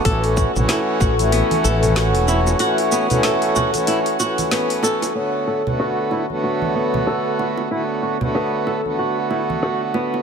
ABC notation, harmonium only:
X:1
M:4/4
L:1/16
Q:"Swing 16ths" 1/4=94
K:Bm
V:1 name="Harmonium"
[E,A,CF]3 [E,A,CF]4 [E,A,CF]8- [E,A,CF] | [E,A,CF]3 [E,A,CF]4 [E,A,CF]3 [E,A,CF]6 | [D,A,B,F]3 [D,A,B,F]4 [D,A,B,F]8- [D,A,B,F] | [D,A,B,F]3 [D,A,B,F]4 [D,A,B,F]8- [D,A,B,F] |]